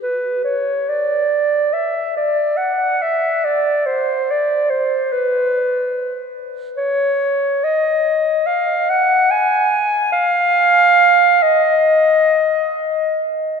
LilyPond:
\new Staff \with { instrumentName = "Clarinet" } { \time 4/4 \key d \major \tempo 4 = 71 b'8 cis''8 d''4 e''8 d''8 fis''8 e''8 | d''8 c''8 d''8 c''8 b'4. r8 | \key dis \minor cis''4 dis''4 eis''8 fis''8 gis''4 | eis''4. dis''2 r8 | }